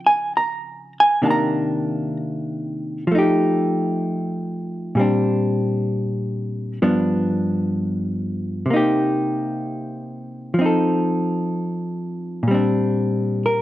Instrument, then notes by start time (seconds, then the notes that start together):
hollow-body jazz guitar
Already playing: C#3 F3 C4 D#4
0.07 G#5
0.37 A#5
1.00 G#5
1.22 C3 D#3 A#3 D4 A5
1.30 A#5
3.07 F3
3.12 A3 D#4
3.18 G4
4.95 A#2 G3
4.99 C4 D4
6.82 G2 F3 B3 D4
8.66 C3
8.70 A#3 D#4
8.76 G4
10.54 F3
10.59 C4 D#4
10.66 A4
12.43 A#2
12.48 G3 C4
12.54 D4
13.46 A#4